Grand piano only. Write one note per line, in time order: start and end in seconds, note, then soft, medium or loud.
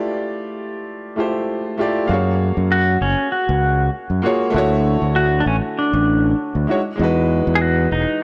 0.00 1.13 A3 medium
0.00 1.14 E4 medium
0.00 1.15 F4 medium
0.00 1.16 G4 medium
0.00 1.17 D5 loud
1.16 1.75 A3 medium
1.16 1.75 E4 medium
1.16 1.76 F4 medium
1.16 1.76 G4 medium
1.20 1.77 C5 medium
1.78 2.06 A3 medium
1.78 2.06 E4 medium
1.78 2.06 F4 medium
1.78 2.07 G4 medium
1.78 2.07 D5 medium
2.06 4.19 A#3 medium
2.06 4.21 F#4 medium
2.06 4.20 F5 medium
2.11 4.21 G#4 medium
2.11 4.22 C#5 medium
4.22 4.50 A#3 medium
4.22 4.51 F4 medium
4.22 4.51 F#4 medium
4.22 4.52 G#4 medium
4.26 4.52 C#5 medium
4.50 6.64 D3 medium
4.50 6.63 A3 loud
4.50 6.65 E4 medium
4.56 6.66 F#4 medium
4.56 6.67 C#5 loud
6.67 6.77 G#3 medium
6.67 6.77 D#4 medium
6.67 6.78 E4 medium
6.67 6.78 F#4 medium
6.71 6.79 C#5 medium
6.96 8.23 E3 medium
6.96 8.23 G#3 medium
6.96 8.23 D#4 medium
7.02 8.23 F#4 medium
7.02 8.23 B4 medium